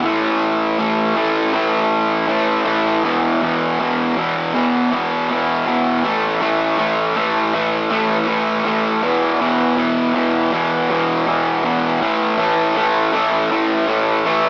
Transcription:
0.05 0.77 A2 loud
0.05 0.78 E3 loud
0.05 0.78 A3 loud
0.79 1.14 A2 medium
0.79 1.15 E3 medium
0.79 1.16 A3 medium
1.15 1.52 A2 medium
1.15 1.53 E3 medium
1.15 1.53 A3 loud
1.53 2.27 A2 medium
1.53 2.28 E3 loud
1.53 2.28 A3 loud
2.28 2.65 A2 medium
2.28 2.66 E3 loud
2.28 2.66 A3 loud
2.66 3.02 A2 medium
2.66 3.02 E3 loud
2.66 3.02 A3 loud
3.04 3.40 E2 loud
3.04 3.41 B2 loud
3.04 3.42 E3 loud
3.41 3.78 E2 medium
3.41 3.78 B2 loud
3.41 3.80 E3 loud
3.79 4.15 E2 medium
3.79 4.16 B2 medium
3.79 4.18 E3 medium
4.17 4.53 E2 medium
4.17 4.53 B2 loud
4.17 4.55 E3 loud
4.54 4.91 E2 loud
4.54 4.92 B2 medium
4.54 4.93 E3 loud
4.92 5.29 E2 loud
4.92 5.29 B2 loud
4.92 5.31 E3 loud
5.30 5.65 E2 loud
5.30 5.66 B2 loud
5.30 5.67 E3 medium
5.67 6.02 E2 loud
5.67 6.02 B2 loud
5.67 6.03 E3 loud
6.03 6.40 A2 loud
6.03 6.41 E3 loud
6.03 6.41 A3 loud
6.41 6.77 A2 loud
6.41 6.79 E3 loud
6.41 6.78 A3 loud
6.78 7.15 A2 medium
6.78 7.16 E3 loud
6.78 7.16 A3 loud
7.16 7.53 A2 loud
7.16 7.54 E3 loud
7.16 7.54 A3 loud
7.54 7.89 A2 loud
7.54 7.90 E3 loud
7.54 7.90 A3 loud
7.90 8.26 A2 loud
7.90 8.28 E3 loud
7.90 8.27 A3 loud
8.28 8.64 A2 medium
8.28 8.66 E3 loud
8.28 8.65 A3 loud
8.65 9.01 A2 medium
8.65 9.03 E3 loud
8.65 9.01 A3 loud
9.03 9.39 E2 loud
9.03 9.40 B2 loud
9.03 9.41 E3 loud
9.40 9.76 E2 loud
9.40 9.76 B2 loud
9.40 9.78 E3 loud
9.77 10.13 E2 loud
9.77 10.14 B2 loud
9.77 10.15 E3 loud
10.14 10.51 E2 loud
10.14 10.52 B2 loud
10.14 10.53 E3 loud
10.52 10.88 E2 medium
10.52 10.89 B2 loud
10.52 10.90 E3 loud
10.89 11.25 E2 loud
10.89 11.26 B2 loud
10.89 11.27 E3 loud
11.26 11.62 E2 medium
11.26 11.63 B2 medium
11.26 11.64 E3 loud
11.64 11.99 E2 medium
11.64 11.99 B2 medium
11.64 12.02 E3 loud
12.01 12.37 A2 loud
12.01 12.39 E3 loud
12.01 12.39 A3 loud
12.39 12.75 A2 loud
12.39 12.77 E3 loud
12.39 12.76 A3 loud
12.76 13.12 A2 loud
12.76 13.14 E3 medium
12.76 13.13 A3 loud
13.13 13.50 A2 loud
13.13 13.52 E3 loud
13.13 13.51 A3 loud
13.51 13.86 A2 medium
13.51 13.88 E3 loud
13.51 13.87 A3 loud
13.87 14.24 A2 loud
13.87 14.25 E3 loud
13.87 14.25 A3 loud
14.25 14.49 A2 medium
14.25 14.49 E3 medium
14.25 14.49 A3 loud

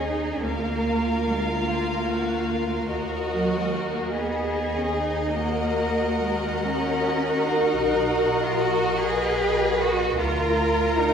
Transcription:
0.00 0.43 D#2 soft
0.00 0.43 G#4 soft
0.00 0.43 D#5 soft
0.06 0.47 D#4 medium
0.46 2.91 D2 soft
0.46 1.27 A#3 medium
0.46 2.87 F4 soft
0.46 4.10 A#4 soft
0.46 1.66 A#4 soft
0.46 2.86 F5 soft
1.27 1.68 G#3 soft
1.67 2.88 A#3 soft
1.67 2.10 F4 soft
2.09 2.49 F#4 soft
2.51 2.91 F4 soft
2.90 7.80 D#2 soft
2.90 4.10 F#4 soft
2.90 4.12 F#4 soft
2.90 4.10 A#4 soft
2.90 4.11 D#5 soft
3.32 3.51 F#3 soft
3.53 3.73 G#3 soft
3.73 4.13 A#3 medium
4.12 4.75 B3 medium
4.12 5.31 G#4 soft
4.12 5.36 G#4 soft
4.12 7.79 D#5 soft
4.76 4.95 C#4 soft
4.95 5.34 D#4 medium
5.34 6.21 A#3 medium
5.34 10.15 F#4 soft
5.34 10.15 A#4 soft
5.34 8.96 A#4 medium
5.34 10.15 F#5 soft
6.20 6.63 G#3 medium
6.63 7.44 C#4 medium
7.44 8.41 D#4 medium
7.81 10.15 B1 medium
7.81 10.14 D#5 soft
8.42 8.61 F4 medium
8.59 8.99 F#4 medium
8.99 9.79 G#4 medium
8.99 10.19 B4 medium
9.78 10.19 F#4 medium
10.19 11.14 D2 medium
10.19 10.96 F4 medium
10.19 11.14 F4 medium
10.19 11.14 A#4 medium
10.19 11.14 A#5 medium
10.98 11.14 D#4 medium

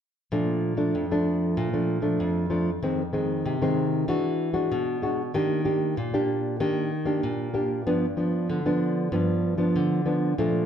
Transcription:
0.32 0.91 A#2 medium
0.32 0.74 F3 medium
0.32 0.74 A3 soft
0.32 0.74 D4 medium
0.77 1.04 F3 medium
0.77 1.04 A3 medium
0.77 1.05 D4 medium
0.95 1.54 F2 medium
1.11 1.69 F3 medium
1.11 1.69 A3 medium
1.11 1.69 D4 medium
1.57 2.17 A#2 medium
1.73 2.00 F3 medium
1.73 2.00 A3 medium
1.73 2.00 D4 medium
2.02 2.45 F3 medium
2.02 2.45 A3 medium
2.02 2.46 D4 medium
2.20 2.80 F2 medium
2.50 2.69 F3 medium
2.50 2.69 A3 soft
2.50 2.70 D4 medium
2.83 3.43 F2 medium
2.83 3.01 D#3 medium
2.83 3.02 G#3 medium
2.83 3.02 C4 medium
3.13 3.56 D#3 soft
3.13 3.56 G#3 medium
3.13 3.56 C4 medium
3.46 4.05 C3 medium
3.62 4.04 D#3 medium
3.62 4.04 G#3 medium
3.62 4.04 C4 medium
4.08 4.68 E3 medium
4.08 4.51 G#3 medium
4.08 4.51 D4 medium
4.08 4.51 F#4 medium
4.53 4.97 G#3 medium
4.53 4.97 D4 medium
4.53 4.97 F#4 medium
4.72 5.31 B2 medium
5.02 5.21 G#3 medium
5.02 5.21 D4 soft
5.02 5.22 F#4 soft
5.34 5.94 D#3 medium
5.34 5.61 A#3 medium
5.34 5.61 D4 medium
5.34 5.61 G4 medium
5.65 5.95 A#3 medium
5.65 5.95 D4 medium
5.65 5.95 G4 medium
5.97 6.57 A#2 medium
6.14 6.56 A#3 medium
6.14 6.56 D4 medium
6.14 6.56 G4 medium
6.60 7.20 D#3 medium
6.60 6.90 A#3 medium
6.60 6.90 D4 medium
6.60 6.90 G4 medium
7.05 7.49 A#3 medium
7.05 7.49 D4 medium
7.05 7.49 G4 medium
7.23 7.83 A#2 medium
7.54 7.81 A#3 soft
7.54 7.81 D4 soft
7.54 7.81 G4 medium
7.87 8.46 G2 medium
7.87 8.05 F3 medium
7.87 8.05 B3 medium
7.87 8.05 D4 medium
8.17 8.60 F3 medium
8.17 8.60 B3 medium
8.17 8.60 D4 medium
8.49 9.09 D3 medium
8.66 9.08 F3 medium
8.66 9.08 B3 medium
8.66 9.08 D4 medium
9.12 9.72 G2 medium
9.12 9.54 F3 soft
9.12 9.54 B3 soft
9.12 9.55 D4 medium
9.58 10.01 F3 medium
9.58 10.01 B3 medium
9.58 10.01 D4 medium
9.76 10.35 D3 medium
10.05 10.33 F3 soft
10.05 10.33 B3 soft
10.05 10.33 D4 medium
10.38 10.66 A#2 medium
10.38 10.66 F3 medium
10.38 10.66 A3 medium
10.38 10.66 D4 medium

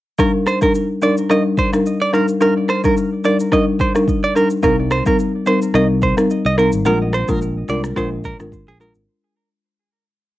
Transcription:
0.19 0.58 G3 medium
0.19 0.58 D4 medium
0.19 0.58 D#4 medium
0.19 0.58 A#4 medium
0.19 0.31 A#4 medium
0.19 kick loud
0.19 shaker medium
0.47 0.59 C5 medium
0.47 cross-stick loud
0.47 shaker medium
0.61 0.81 G3 medium
0.61 0.82 D4 medium
0.61 0.82 D#4 medium
0.61 0.82 A#4 medium
0.61 0.72 A#4 medium
0.61 kick medium
0.61 shaker medium
0.75 shaker medium
1.02 1.23 G3 medium
1.02 1.23 D4 medium
1.02 1.24 D#4 medium
1.02 1.24 A#4 medium
1.02 1.15 D5 medium
1.02 shaker medium
1.18 shaker medium
1.30 1.69 G3 medium
1.30 1.69 D4 medium
1.30 1.69 D#4 medium
1.30 1.70 A#4 loud
1.30 1.42 D#5 medium
1.30 cross-stick medium
1.30 shaker medium
1.58 1.70 C5 medium
1.58 kick medium
1.58 shaker soft
1.73 1.93 G3 medium
1.73 1.93 D4 medium
1.73 1.93 D#4 medium
1.73 1.93 A#4 medium
1.73 cross-stick medium
1.73 shaker medium
1.86 shaker medium
2.02 2.11 D5 medium
2.13 2.34 G3 medium
2.13 2.34 D4 medium
2.13 2.35 D#4 medium
2.13 2.35 A#4 medium
2.13 2.26 A#4 medium
2.13 cross-stick medium
2.13 shaker medium
2.28 shaker medium
2.41 2.80 G3 medium
2.41 2.80 D4 medium
2.41 2.80 D#4 medium
2.41 2.81 A#4 medium
2.41 2.53 A#4 medium
2.41 shaker medium
2.69 2.81 C5 medium
2.69 cross-stick loud
2.69 shaker medium
2.84 3.04 G3 medium
2.84 3.04 D4 medium
2.84 3.04 D#4 medium
2.84 3.04 A#4 medium
2.84 2.94 A#4 medium
2.84 kick loud
2.84 shaker medium
2.97 shaker medium
3.24 3.45 G3 medium
3.24 3.46 D4 medium
3.24 3.46 D#4 medium
3.24 3.46 A#4 medium
3.24 3.37 D5 medium
3.24 shaker medium
3.40 shaker medium
3.52 3.91 G3 medium
3.52 3.92 D4 medium
3.52 3.92 D#4 medium
3.52 3.92 A#4 loud
3.52 3.64 D#5 medium
3.52 kick medium
3.52 cross-stick medium
3.52 shaker medium
3.80 3.92 C5 medium
3.80 kick medium
3.80 shaker soft
3.95 4.15 G3 medium
3.95 4.15 D4 medium
3.95 4.15 D#4 medium
3.95 4.15 A#4 medium
3.95 cross-stick medium
3.95 shaker medium
4.08 kick medium
4.08 shaker medium
4.24 4.33 D5 medium
4.35 4.57 G3 medium
4.35 4.57 D4 medium
4.35 4.57 D#4 medium
4.35 4.57 A#4 medium
4.35 4.48 A#4 medium
4.35 shaker medium
4.50 shaker medium
4.63 5.00 C2 loud
4.63 5.02 G3 medium
4.63 5.03 C4 medium
4.63 5.03 D#4 medium
4.63 5.03 A#4 medium
4.63 4.75 A#4 medium
4.63 kick loud
4.63 shaker medium
4.91 5.03 C5 medium
4.91 cross-stick loud
4.91 shaker medium
5.06 5.26 G3 medium
5.06 5.26 C4 medium
5.06 5.26 D#4 medium
5.06 5.26 A#4 medium
5.06 5.16 A#4 medium
5.06 kick loud
5.06 shaker medium
5.19 shaker medium
5.46 5.68 G3 medium
5.46 5.68 C4 medium
5.46 5.68 D#4 medium
5.46 5.68 A#4 medium
5.46 5.59 C5 medium
5.46 shaker medium
5.62 shaker medium
5.74 6.11 C2 loud
5.74 6.14 G3 medium
5.74 6.14 C4 medium
5.74 6.14 D#4 medium
5.74 6.14 A#4 loud
5.74 5.87 D#5 medium
5.74 cross-stick medium
5.74 shaker medium
6.02 6.14 C5 medium
6.02 kick medium
6.02 shaker soft
6.17 6.37 G3 medium
6.17 6.37 C4 medium
6.17 6.37 D#4 medium
6.17 6.37 A#4 medium
6.17 cross-stick loud
6.17 shaker medium
6.30 shaker medium
6.45 6.69 C2 medium
6.45 6.55 D#5 medium
6.57 6.79 G3 medium
6.57 6.79 C4 medium
6.57 6.79 D#4 medium
6.57 6.79 A#4 medium
6.57 6.70 A#4 medium
6.57 cross-stick medium
6.57 shaker medium
6.72 6.84 G#1 medium
6.72 shaker medium
6.85 7.23 A#1 loud
6.85 7.25 G#3 medium
6.85 7.25 D4 medium
6.85 7.25 F4 medium
6.85 7.25 A#4 loud
6.85 6.98 A#4 medium
6.85 shaker medium
7.13 7.30 C5 medium
7.13 cross-stick loud
7.13 shaker medium
7.28 7.63 A#1 medium
7.28 7.48 G#3 medium
7.28 7.48 D4 medium
7.28 7.48 F4 medium
7.28 7.48 A#4 medium
7.28 7.39 A#4 medium
7.28 kick loud
7.28 shaker medium
7.41 shaker medium
7.68 7.93 C2 medium
7.68 7.90 G#3 medium
7.68 7.90 D4 medium
7.68 7.90 F4 medium
7.68 7.90 A#4 medium
7.68 7.81 D5 medium
7.68 shaker medium
7.84 cross-stick medium
7.84 shaker medium
7.96 8.34 A#1 medium
7.96 8.36 G#3 medium
7.96 8.36 D4 medium
7.96 8.36 F4 medium
7.96 8.36 A#4 loud
7.96 8.09 C5 medium
7.96 kick loud
7.96 cross-stick medium
7.96 shaker medium
8.24 8.37 A#4 medium
8.24 kick loud
8.24 shaker soft
8.39 8.64 G#1 medium
8.39 8.59 G#3 medium
8.39 8.59 D4 medium
8.39 8.60 F4 medium
8.39 8.60 A#4 medium
8.39 cross-stick medium
8.39 shaker medium
8.52 kick medium
8.52 shaker medium
8.68 8.91 A#1 medium
8.68 8.78 G#4 medium
8.80 9.01 G#3 medium
8.80 9.01 D4 medium
8.80 9.01 F4 medium
8.80 9.01 A#4 medium
8.80 8.92 A#4 medium
8.80 shaker medium
8.95 9.06 G#1 medium
8.95 shaker medium

